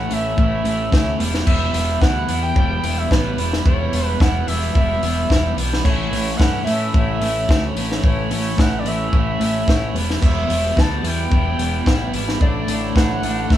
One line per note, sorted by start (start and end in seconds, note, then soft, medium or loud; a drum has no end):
0.00 0.10 E3 medium
0.00 0.10 A3 medium
0.00 0.11 C#4 medium
0.00 0.12 E4 loud
0.00 0.14 F#5 loud
0.09 0.32 A1 medium
0.09 0.36 A2 medium
0.09 0.37 E3 medium
0.09 0.37 A3 medium
0.09 0.37 C#4 medium
0.09 0.39 E4 medium
0.09 0.39 E5 loud
0.09 open hi-hat medium
0.37 0.60 A1 medium
0.37 0.64 A2 medium
0.37 0.65 E3 medium
0.37 0.65 A3 medium
0.37 0.65 C#4 medium
0.37 0.67 E4 loud
0.37 1.17 E5 medium
0.37 kick loud
0.64 0.87 A1 medium
0.64 0.90 A2 medium
0.64 0.92 E3 medium
0.64 0.92 A3 medium
0.64 0.93 C#4 medium
0.64 0.93 E4 medium
0.64 open hi-hat medium
0.92 1.14 D2 medium
0.92 1.18 A2 medium
0.92 1.19 E3 loud
0.92 1.19 A3 medium
0.92 1.19 C#4 loud
0.92 1.21 E4 loud
0.92 kick loud
0.92 snare loud
1.18 1.41 E1 medium
1.18 1.45 E2 medium
1.18 1.45 B2 medium
1.18 1.47 E3 loud
1.18 1.47 G3 medium
1.18 1.48 B3 medium
1.18 1.48 E4 loud
1.18 open hi-hat medium
1.34 snare medium
1.46 1.69 E1 medium
1.46 1.73 E2 medium
1.46 1.73 B2 loud
1.46 1.75 E3 medium
1.46 1.75 G3 loud
1.46 1.76 B3 medium
1.46 1.76 E4 loud
1.46 1.98 E5 loud
1.46 kick loud
1.46 crash loud
1.73 1.96 E1 medium
1.73 2.00 E2 medium
1.73 2.00 B2 medium
1.73 2.02 E3 medium
1.73 2.02 G3 medium
1.73 2.02 B3 medium
1.73 2.03 E4 medium
1.73 open hi-hat medium
2.00 2.23 D2 loud
2.00 2.28 E2 medium
2.00 2.28 B2 medium
2.00 2.29 E3 medium
2.00 2.30 G3 medium
2.00 2.31 B3 loud
2.00 2.31 E4 loud
2.00 2.40 F#5 loud
2.00 kick loud
2.00 snare loud
2.29 2.51 E2 medium
2.29 2.54 E2 medium
2.29 2.55 B2 medium
2.29 2.57 E3 medium
2.29 2.56 G3 medium
2.29 2.57 B3 medium
2.29 2.58 E4 medium
2.29 open hi-hat medium
2.43 2.99 G5 loud
2.56 2.78 E1 loud
2.56 2.81 E2 medium
2.56 2.82 B2 loud
2.56 2.83 E3 medium
2.56 2.83 G3 medium
2.56 2.83 B3 medium
2.56 2.85 E4 loud
2.56 kick loud
2.82 3.05 E1 medium
2.82 3.08 E2 medium
2.82 3.09 B2 medium
2.82 3.10 E3 medium
2.82 3.10 G3 medium
2.82 3.11 B3 medium
2.82 3.12 E4 loud
2.82 open hi-hat medium
2.98 3.13 E5 loud
3.09 3.33 A1 medium
3.09 3.35 E2 medium
3.09 3.36 B2 medium
3.09 3.38 E3 loud
3.09 3.37 G3 medium
3.09 3.38 B3 loud
3.09 3.39 E4 medium
3.09 3.52 B4 medium
3.09 kick loud
3.09 snare loud
3.37 3.60 E1 medium
3.37 3.63 E2 medium
3.37 3.64 B2 medium
3.37 3.65 E3 medium
3.37 3.65 G3 medium
3.37 3.65 B3 medium
3.37 3.66 E4 medium
3.37 open hi-hat medium
3.53 snare medium
3.64 3.87 E1 loud
3.64 3.90 E2 medium
3.64 3.91 B2 loud
3.64 3.93 E3 loud
3.64 3.92 G3 loud
3.64 3.93 B3 loud
3.64 3.94 E4 loud
3.64 4.06 C#5 medium
3.64 kick loud
3.92 4.15 E1 loud
3.92 4.18 E2 medium
3.92 4.19 B2 medium
3.92 4.21 E3 medium
3.92 4.20 G3 medium
3.92 4.20 B3 medium
3.92 4.22 E4 medium
3.92 open hi-hat medium
4.06 4.22 B4 medium
4.19 4.42 E1 medium
4.19 4.45 E2 medium
4.19 4.46 B2 medium
4.19 4.47 E3 loud
4.19 4.47 G3 medium
4.19 4.48 B3 loud
4.19 4.49 E4 medium
4.19 4.49 F#5 medium
4.19 kick loud
4.19 snare loud
4.47 4.69 E1 medium
4.47 4.72 E2 medium
4.47 4.73 B2 medium
4.47 4.74 E3 medium
4.47 4.74 G3 medium
4.47 4.74 B3 medium
4.47 4.76 E4 medium
4.47 4.74 E5 loud
4.47 open hi-hat medium
4.73 4.97 E1 medium
4.73 5.00 E2 loud
4.73 5.01 B2 medium
4.73 5.03 E3 medium
4.73 5.02 G3 loud
4.73 5.03 B3 medium
4.73 5.04 E4 loud
4.73 5.53 E5 medium
4.73 kick loud
5.01 5.24 E1 medium
5.01 5.28 E2 medium
5.01 5.29 B2 medium
5.01 5.30 E3 medium
5.01 5.30 G3 medium
5.01 5.30 B3 medium
5.01 5.31 E4 medium
5.01 open hi-hat medium
5.29 5.51 E1 loud
5.29 5.55 E2 medium
5.29 5.56 B2 medium
5.29 5.57 E3 medium
5.29 5.57 G3 medium
5.29 5.57 B3 loud
5.29 5.58 E4 medium
5.29 kick loud
5.29 snare loud
5.56 5.78 B1 medium
5.56 5.82 E2 medium
5.56 5.83 B2 medium
5.56 5.84 E3 medium
5.56 5.83 G3 medium
5.56 5.84 B3 medium
5.56 5.86 E4 medium
5.56 open hi-hat medium
5.73 snare medium
5.84 6.06 A1 loud
5.84 6.11 A2 medium
5.84 6.12 E3 loud
5.84 6.12 A3 medium
5.84 6.13 C#4 loud
5.84 6.13 E4 loud
5.84 6.38 C#5 loud
5.84 kick loud
5.84 crash medium
6.11 6.33 A1 medium
6.11 6.39 A2 medium
6.11 6.39 E3 medium
6.11 6.40 A3 medium
6.11 6.40 C#4 medium
6.11 6.41 E4 loud
6.11 open hi-hat medium
6.37 6.61 G2 medium
6.37 6.65 A2 medium
6.37 6.66 E3 medium
6.37 6.66 A3 loud
6.37 6.66 C#4 loud
6.37 6.64 F#5 loud
6.37 kick loud
6.37 snare loud
6.41 6.68 E4 medium
6.64 6.88 A2 medium
6.64 6.92 A2 medium
6.64 6.94 E3 medium
6.64 6.93 A3 medium
6.64 6.94 C#4 medium
6.64 6.91 E5 medium
6.64 open hi-hat medium
6.68 6.95 E4 medium
6.92 7.16 A1 loud
6.92 7.20 A2 medium
6.92 7.22 E3 medium
6.92 7.21 A3 medium
6.92 7.22 C#4 loud
6.92 7.23 E4 loud
6.92 7.71 E5 loud
6.92 kick loud
7.21 7.43 A1 medium
7.21 7.47 A2 medium
7.21 7.49 E3 medium
7.21 7.49 A3 medium
7.21 7.49 C#4 medium
7.21 7.50 E4 medium
7.21 open hi-hat medium
7.48 7.71 D2 medium
7.48 7.74 A2 medium
7.48 7.76 E3 medium
7.48 7.76 A3 medium
7.48 7.76 C#4 loud
7.48 7.78 E4 medium
7.48 kick loud
7.48 snare loud
7.75 7.97 A1 medium
7.75 8.02 A2 medium
7.75 8.03 E3 medium
7.75 8.03 A3 medium
7.75 8.04 C#4 medium
7.75 8.05 E4 medium
7.75 open hi-hat medium
7.92 snare medium
8.03 8.25 A1 medium
8.03 8.29 A2 medium
8.03 8.30 E3 medium
8.03 8.30 A3 loud
8.03 8.31 C#4 loud
8.03 8.32 E4 loud
8.03 kick loud
8.07 8.61 C#5 medium
8.30 8.52 A1 medium
8.30 8.56 A2 medium
8.30 8.58 E3 medium
8.30 8.58 A3 medium
8.30 8.58 C#4 medium
8.30 8.59 E4 medium
8.30 open hi-hat medium
8.57 8.80 A1 loud
8.57 8.84 A2 loud
8.57 8.86 E3 medium
8.57 8.85 A3 medium
8.57 8.86 C#4 medium
8.57 8.87 E4 medium
8.57 8.80 F#5 loud
8.57 kick loud
8.57 snare loud
8.79 8.89 D5 medium
8.85 9.07 A1 medium
8.85 9.12 A2 medium
8.85 9.13 E3 medium
8.85 9.13 A3 medium
8.85 9.13 C#4 loud
8.85 9.14 E4 medium
8.85 9.13 E5 medium
8.85 open hi-hat medium
9.13 9.35 A1 medium
9.13 9.39 A2 medium
9.13 9.41 E3 medium
9.13 9.41 A3 medium
9.13 9.41 C#4 medium
9.13 9.43 E4 loud
9.13 9.91 E5 loud
9.13 kick loud
9.39 9.61 A1 medium
9.39 9.66 A2 medium
9.39 9.67 E3 medium
9.39 9.67 A3 medium
9.39 9.68 C#4 medium
9.39 open hi-hat medium
9.43 9.69 E4 medium
9.67 9.89 A1 loud
9.67 9.93 A2 medium
9.67 9.95 E3 medium
9.67 9.94 A3 loud
9.67 9.94 C#4 loud
9.67 9.96 E4 medium
9.67 kick loud
9.67 snare loud
9.93 10.16 E1 medium
9.93 10.19 E2 medium
9.93 10.20 B2 loud
9.93 10.21 E3 loud
9.93 10.21 G3 medium
9.93 10.22 B3 medium
9.93 10.23 E4 loud
9.93 open hi-hat medium
10.10 snare medium
10.21 10.44 E1 medium
10.21 10.47 E2 medium
10.21 10.48 B2 medium
10.21 10.49 E3 medium
10.21 10.49 G3 loud
10.21 10.49 B3 loud
10.21 10.51 E4 loud
10.21 10.81 E5 loud
10.21 kick loud
10.21 crash medium
10.48 10.71 E1 loud
10.48 10.75 E2 medium
10.48 10.76 B2 medium
10.48 10.77 E3 medium
10.48 10.77 G3 medium
10.48 10.77 B3 medium
10.48 10.79 E4 medium
10.48 open hi-hat medium
10.76 10.99 D2 loud
10.76 11.02 E2 medium
10.76 11.03 B2 medium
10.76 11.04 E3 medium
10.76 11.04 G3 loud
10.76 11.05 B3 loud
10.76 11.06 E4 loud
10.76 11.09 A5 medium
10.76 kick loud
10.76 snare loud
11.03 11.25 E2 medium
11.03 11.29 E2 medium
11.03 11.30 B2 medium
11.03 11.31 E3 loud
11.03 11.31 G3 loud
11.03 11.31 B3 loud
11.03 11.33 E4 medium
11.03 11.33 G5 loud
11.03 open hi-hat medium
11.30 11.53 E1 loud
11.30 11.57 E2 medium
11.30 11.57 B2 medium
11.30 11.58 E3 loud
11.30 11.58 G3 medium
11.30 11.59 B3 loud
11.30 11.60 E4 medium
11.30 12.11 G5 loud
11.30 kick loud
11.57 11.80 E1 medium
11.57 11.84 E2 medium
11.57 11.84 B2 medium
11.57 11.86 E3 medium
11.57 11.85 G3 medium
11.57 11.86 B3 medium
11.57 11.87 E4 medium
11.57 open hi-hat medium
11.85 12.08 A1 medium
11.85 12.11 E2 medium
11.85 12.12 B2 medium
11.85 12.13 E3 loud
11.85 12.13 G3 loud
11.85 12.14 B3 medium
11.85 12.15 E4 medium
11.85 kick loud
11.85 snare loud
12.12 12.35 G#1 medium
12.12 12.39 E2 medium
12.12 12.39 B2 medium
12.12 12.40 E3 medium
12.12 12.40 G3 medium
12.12 12.40 B3 medium
12.12 12.41 E4 medium
12.12 open hi-hat medium
12.29 snare medium
12.40 12.62 A1 medium
12.40 12.67 A2 loud
12.40 12.67 D3 medium
12.40 12.68 A3 loud
12.40 12.69 D4 loud
12.40 12.69 E4 loud
12.40 12.92 D5 medium
12.40 kick loud
12.67 12.89 A1 medium
12.67 12.94 A2 medium
12.67 12.94 D3 medium
12.67 12.95 A3 medium
12.67 12.95 D4 medium
12.67 12.96 E4 loud
12.67 open hi-hat medium
12.95 13.17 A1 medium
12.95 13.21 A2 medium
12.95 13.22 D3 medium
12.95 13.23 A3 medium
12.95 13.23 D4 loud
12.95 13.23 E4 loud
12.95 13.54 F#5 loud
12.95 kick loud
12.95 snare loud
13.22 13.44 A1 medium
13.22 13.48 A2 medium
13.22 13.49 D3 medium
13.22 13.49 A3 loud
13.22 13.50 D4 loud
13.22 13.51 E4 loud
13.22 open hi-hat medium
13.49 13.57 A1 medium
13.49 13.57 A2 medium
13.49 13.57 D3 medium
13.49 13.57 A3 medium
13.49 13.57 D4 medium
13.49 13.57 E4 medium
13.49 13.57 E5 loud
13.49 kick loud
13.49 snare medium